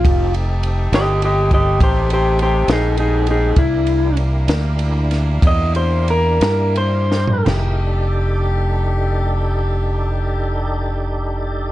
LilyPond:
<<
  \new Staff \with { instrumentName = "Clean electric guitar" } { \time 12/8 \key f \mixolydian \tempo 4. = 63 f'8 r4 <g' ees''>8 <g' ees''>8 <g' ees''>8 <g' c''>8 <g' c''>8 <g' c''>8 <ees' aes'>8 <ees' aes'>8 <ees' aes'>8 | e'4 r2 ees''8 c''8 bes'4 c''4 | r1. | }
  \new Staff \with { instrumentName = "Tonewheel organ" } { \time 12/8 \key f \mixolydian <c' ees' g' a'>1. | <d' e' g' bes'>1. | <ees' e' aes' bes'>8 <d' ees' g' a'>1~ <d' ees' g' a'>4. | }
  \new Staff \with { instrumentName = "Saxophone section" } { \time 12/8 \key f \mixolydian <a ees' g'>1. | <bes d' e'>1. | <a g'>1. | }
  \new Staff \with { instrumentName = "Fingered electric bass" } { \clef bass \time 12/8 \key f \mixolydian f,,4. g,,4. a,,4. bes,,4. | c,4. d,4. e,4. g,4. | f,,1. | }
  \new DrumStaff \with { instrumentName = "Drums" } \drummode { \time 12/8 <bd cymr>8 cymr8 cymr8 <cymr sn>8 cymr8 <bd cymr>8 <bd cymr>8 cymr8 cymr8 <cymr sn>8 cymr8 cymr8 | <bd cymr>8 cymr8 cymr8 <cymr sn>8 cymr8 <cymr sn>8 <bd cymr>8 cymr8 cymr8 <cymr sn>8 cymr8 sn16 tomfh16 | <cymc sn tomfh>4. r4. r4. r4. | }
>>